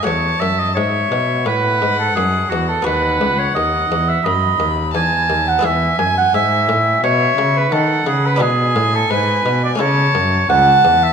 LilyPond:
<<
  \new Staff \with { instrumentName = "Violin" } { \time 4/4 \key e \major \tempo 4 = 86 a''4 e''4 fis''2 | fis''2 b''4 a''4 | gis''2 e''4 fis''4 | \key a \major gis''2 a''4 a''4 | }
  \new Staff \with { instrumentName = "Oboe" } { \time 4/4 \key e \major cis''8 e''16 dis''16 cis''4 b'8. a'16 gis'8 fis'16 a'16 | b'8. cis''16 dis''8. e''16 dis''8. r16 gis''8. fis''16 | e''8 gis''16 fis''16 e''4 cis''8. b'16 a'8 gis'16 b'16 | \key a \major gis'8. a'16 b'8. d''16 cis''4 fis''8. e''16 | }
  \new Staff \with { instrumentName = "Harpsichord" } { \time 4/4 \key e \major <a fis'>1 | <b fis'>1 | <b e' gis'>1 | \key a \major <b d' e'>2 <a cis' e'>2 | }
  \new Staff \with { instrumentName = "Harpsichord" } { \clef bass \time 4/4 \key e \major e,8 fis,8 gis,8 b,8 a,8 gis,8 fis,8 e,8 | dis,8 cis,8 dis,8 e,8 fis,8 dis,8 e,8 dis,8 | e,8 fis,8 gis,8 a,8 b,8 cis8 dis8 cis8 | \key a \major b,8 a,8 gis,8 b,8 cis8 fis,8 cis,8 e,8 | }
  \new Staff \with { instrumentName = "Cello" } { \clef bass \time 4/4 \key e \major e,8 fis,8 gis,8 b,8 a,8 gis,8 fis,8 e,8 | dis,8 cis,8 dis,8 e,8 fis,8 dis,8 e,8 dis,8 | e,8 fis,8 gis,8 a,8 b,8 cis8 dis8 cis8 | \key a \major b,8 a,8 gis,8 b,8 cis8 fis,8 cis,8 e,8 | }
>>